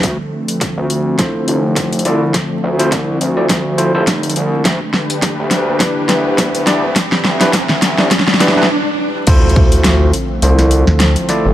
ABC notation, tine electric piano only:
X:1
M:4/4
L:1/16
Q:"Swing 16ths" 1/4=104
K:Ddor
V:1 name="Tine electric piano"
z8 [EFAc]6 [EFAd] z | z3 [EFAc] z3 [EFAd] z2 [EFAc] [EFAc] z4 | z8 [DEGB]6 [DEGd] z | z3 [DEGB] z3 [DEGd] z2 [DEGB] [DEGB] z4 |
[EFAc]6 z2 [EFAc]6 [EFAd] z |]